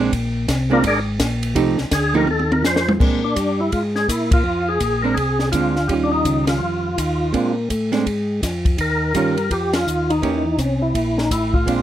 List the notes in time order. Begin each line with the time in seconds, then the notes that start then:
0.00 A#1 G#3 C4 D4
0.12 A#1, kick, ride
0.48 C2, kick, snare, hi-hat pedal, ride
0.70 G#3 A#3 C4 D4 F4 A#4
0.84 G#1 D4 G#4 A#4 D5, kick, ride
1.20 A#1, kick, snare, hi-hat pedal, ride
1.43 ride
1.55 C2 F3 A3 D#4 G4, kick, ride
1.78 C2, snare
1.91 D2 G#4, kick, snare, hi-hat pedal, ride
2.14 F3 A3 D#4 G4 A#4
2.27 D#2 A4, high tom
2.39 high tom
2.52 A#4, high tom
2.63 F2 C5, snare, hi-hat pedal
2.76 snare
2.89 mid tom
3.00 A#2 G#3 C4 D4, kick, crash
3.24 D4
3.36 G2, kick, hi-hat pedal, ride
3.60 E4
3.72 G#2 F4, kick, ride
3.95 G#4, snare
4.09 A#2 E4, kick, hi-hat pedal, ride
4.31 F4, kick, ride
4.44 F2
4.68 G#4
4.80 A#1, kick, hi-hat pedal, ride
5.02 G#3 C4 D4 A#4
5.14 C2 G#4, kick, ride
5.39 snare
5.52 D2 G#3 C4 D4 F4, kick, hi-hat pedal, ride
5.76 snare
5.88 D#2 D#3 G3 C#4 F4 G4, kick, ride
6.04 D4
6.12 D#4
6.25 C#2, kick, hi-hat pedal, ride
6.47 F4, snare, ride
6.60 F2
6.98 D#2, kick, hi-hat pedal, ride
7.32 A#2 G#3 C4 D4, kick, ride
7.70 A2, kick, hi-hat pedal, ride
7.92 G#3 C4 D4, snare, ride
8.06 G#2, kick, ride
8.43 F2, kick, snare, hi-hat pedal, ride
8.65 kick, ride
8.78 D#2 A#4, kick, ride
9.14 G2 D#3 G3 C#4 F4, kick, hi-hat pedal, ride
9.37 ride
9.50 F2 G4, kick, ride
9.73 F4, snare, ride
9.87 D#2, hi-hat pedal
10.10 D#4, ride
10.22 E2 E3 A#3 C#4 G4, kick, ride
10.58 C2 C#4, kick, hi-hat pedal, ride
10.82 E4
10.94 A#1, kick, ride
11.17 D#4, snare
11.30 A1 E4, kick, hi-hat pedal, ride
11.54 F4, kick
11.66 A#1 G#3 C4 D4, kick, ride